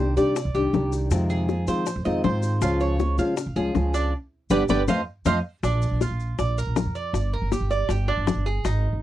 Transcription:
Already playing: C2 D#3 C5
0.00 G3 D4 G4
0.17 C3 D#3 G3 D4 G4 D5, high bongo, maracas
0.36 muted nylon-string guitar stroke, high bongo, maracas
0.45 C2
0.54 C2 D#3 G3 D4 G4, maracas
0.73 C2 D#3 G3 D4 G4, high bongo, low bongo, maracas
0.92 high bongo, maracas
1.11 F2 C3 D#3 G#3 C4 F4, high bongo, maracas
1.30 G#4, high bongo, maracas
1.49 D#3 G#3 C4 F4, high bongo, maracas
1.67 D#3 F3 G#3 C4 F4 C5, high bongo, maracas
1.86 muted nylon-string guitar stroke, high bongo, maracas
1.96 F2
2.05 F2 D#3 G#3 C4 F4 D#5, maracas
2.24 G#2 D#3 G#3 C4 F4 C5, high bongo, low bongo, maracas
2.43 high bongo, maracas
2.61 C#2 C#3 F3 G#3 C#4 F4, high bongo, maracas
2.80 C#5, high bongo, maracas
2.99 F3 G#3 C#4 F4, high bongo, maracas
3.18 C#3 F3 G#3 C#4 F4 F5, high bongo, maracas
3.37 muted nylon-string guitar stroke, high bongo, maracas
3.46 C#2
3.56 C#2 F3 G#3 C#4 F4 G#4, maracas
3.75 C#2 F3 G#3 C#4 F4, high bongo, low bongo, maracas
3.94 D4, high bongo, maracas
4.50 G1 D3 G3 B3 G4 B4 D5, low bongo, maracas
4.69 G1 D3 G3 B3 G4 B4 D5, low bongo, maracas
4.87 F2 F3 A3 C4 C5 D#5 F5, low bongo, maracas
5.25 F2 F3 A3 C4 C5 D#5 F5, low bongo, maracas
5.63 A#1 D4, high bongo, maracas
5.82 maracas
5.91 A#1
6.01 F4, high bongo, maracas
6.11 A#1
6.20 maracas
6.39 A#1 D5, high bongo, maracas
6.58 A#4, maracas
6.67 A#1
6.76 high bongo, low bongo, maracas
6.86 F2
6.95 D5, maracas
7.13 G1, high bongo, maracas
7.33 A#4
7.42 G1
7.52 G4, high bongo, maracas
7.61 G1
7.70 D5, high bongo, maracas
7.89 G1 G4, high bongo, maracas
8.08 D4, high bongo
8.17 G1
8.27 high bongo, low bongo, maracas
8.36 G1
8.46 G#4, high bongo, maracas
8.65 G#1 D#4, high bongo, maracas
8.93 G#1

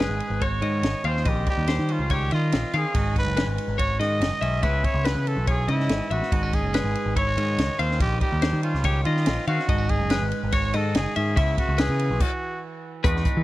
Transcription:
Already playing: G#2 C#4 G#4
0.00 G#3 B4, snare
0.09 G#1
0.20 ride
0.30 G#1
0.41 F#4 C#5, kick, ride
0.61 G#2 D#3 D#5, ride
0.83 G#1, snare, ride
1.04 D#2 D#3 C4 C#4 F4 C5 F5, ride
1.16 snare
1.25 A#1 G4 D#5, kick, ride
1.47 G3 G4, kick, ride
1.58 D#2
1.68 C5, snare, ride
1.79 D#3
1.89 C#4 F4, ride
1.99 C#2
2.10 D#3 G4 C#5, kick, ride
2.31 D#3 F4 D#5, ride
2.52 A#1 C4, snare, ride
2.74 D#3 C4 C#4 G#4 F5, ride
2.94 G#1 G#2 C#4 F#4 D#5, kick, ride
3.16 B4, kick, ride
3.26 F#1
3.36 G#3 B4, snare, ride
3.47 G#1
3.58 ride
3.68 G#1
3.78 F#4 C#5, kick, ride
4.00 G#2 D#3 D#5, snare, ride
4.20 F#1, snare, ride
4.41 B1 C#4 E5, ride
4.62 C#2 C#3 B3 C#4 E4 B4 E5, kick, ride
4.84 C#5, kick, ride
4.94 C#2
5.05 E3 B4, snare, ride
5.15 C#3
5.27 A4, ride
5.37 B1
5.47 C#4 G#4 C#5, kick, ride
5.68 G#2 C#3 E4 D#5, ride
5.80 snare
5.89 G#1, snare, ride
6.11 A1 B3 F#4 E5, ride
6.23 snare
6.32 G#1 G#2 B3 D#5, kick, ride
6.43 C#4
6.53 G#4, kick, ride
6.63 F#1
6.74 G#3 B4, snare, ride
6.84 G#1
6.96 ride
7.06 G#1
7.16 E4 C#5, kick, ride
7.27 F#4
7.37 G#2 D#3 D#5, ride
7.58 C#2, snare, ride
7.79 D#2 D#3 C4 C#4 F4 C5 F5, ride
7.91 snare
8.00 A#1 G4 D#5, kick, ride
8.20 G3 G4, kick, ride
8.32 D#2
8.42 C5, snare, ride
8.53 D#3
8.63 C#4 F4, ride
8.74 C#2, snare
8.84 D#3 G4 C#5, kick, ride
9.04 D#3 F4 D#5, ride
9.17 snare
9.26 A#1 C4, snare, ride
9.47 D#3 C4 C#4 F#4 F5, ride
9.59 snare
9.67 G#1 G#2 B3 D#5, kick, ride
9.78 C#4
9.89 G#4, kick, ride
10.01 F#1
10.10 G#3 B4, snare, ride
10.22 G#1
10.32 ride
10.43 G#1
10.52 F#4 C#5, kick, ride
10.74 G#2 D#3 A4 D#5, ride
10.95 F#1 G#4, snare, ride
11.16 G#2 C#4 G#4 E5, ride
11.36 C#2 C#3 B3 C#4 E4 E5, kick, ride
11.58 F#4, kick, ride
11.68 C#2
11.78 E3 G#4 B4, snare, ride
11.89 C#3
11.99 ride
12.10 B1
12.20 F#4, kick, crash
13.04 E2 G#3 D#4 F#4 B4, kick, closed hi-hat
13.16 snare
13.25 G#3, kick, closed hi-hat
13.37 E3

